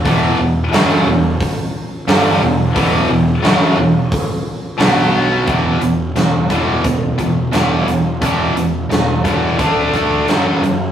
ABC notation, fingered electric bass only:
X:1
M:4/4
L:1/8
Q:1/4=88
K:Em
V:1 name="Fingered electric bass" clef=bass
E,,, E,,, F,,, E,,, z2 G,,, E,,, | E,,, E,,, F,,, E,,, z2 B,,,2 | E,,, E,,, E,,,2 E,,, E,,, E,,, E,,, | E,,, E,,, E,,,2 D,, D,, F,,, F,,, |]